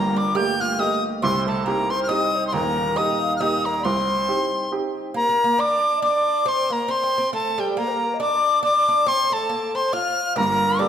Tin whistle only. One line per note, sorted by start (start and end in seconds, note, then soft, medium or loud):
0.00 0.19 A#5 loud
0.17 0.38 D6 loud
0.36 0.62 G6 loud
0.61 0.81 F6 loud
0.80 1.03 D#6 loud
1.23 1.46 C6 loud
1.47 1.66 A5 medium
1.65 1.92 A#5 loud
1.90 2.02 C6 loud
2.03 2.10 F6 medium
2.08 2.47 D#6 loud
2.47 2.55 C6 medium
2.53 2.99 A#5 loud
2.97 3.36 D#6 loud
3.36 3.67 D#6 loud
3.36 3.42 F6 medium
3.65 3.85 A#5 medium
3.84 4.71 C6 loud
5.16 5.62 A#5 loud
5.60 6.02 D6 loud
6.03 6.50 D6 loud
6.48 6.74 C6 loud
6.73 6.92 A#5 medium
6.91 7.33 C6 loud
7.34 7.61 A5 loud
7.60 7.79 G5 medium
7.78 8.20 A#5 loud
8.21 8.60 D6 loud
8.64 9.10 D6 loud
9.08 9.35 C6 loud
9.33 9.77 A5 loud
9.76 9.95 C6 loud
9.93 10.36 F6 loud
10.37 10.82 A#5 loud
10.80 10.88 D6 loud